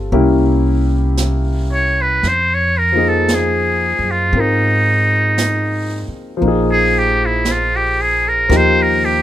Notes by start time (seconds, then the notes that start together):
Already playing: G3 C4 F4 A4
0.12 C2 A#3 C#4 E4 G4, brush sweep
1.17 brush sweep, snare, hi-hat pedal
1.73 C#5
2.01 B4
2.23 F2, brush sweep, snare
2.28 C5
2.54 C#5
2.78 A#4
2.92 F3 A#3 D#4
2.97 G#4
3.08 A4
3.28 brush sweep, snare, hi-hat pedal
3.34 G#4
3.99 F#2
4.11 F4
4.33 G#2 C4 F4 A#4, brush sweep
4.40 D#4
5.38 brush sweep, snare, hi-hat pedal
6.08 muted upright bass stroke
6.37 F3
6.41 A#1 A#3 D#4, brush sweep
6.48 G#4
6.71 G#4
6.98 G4
7.25 E4
7.45 brush sweep, snare, hi-hat pedal
7.51 F4
7.76 G4
8.01 G#4
8.28 A#4
8.49 D#2 F3 A#3 D#4 G4, brush sweep, snare
8.57 C5
8.82 A#4
9.05 G4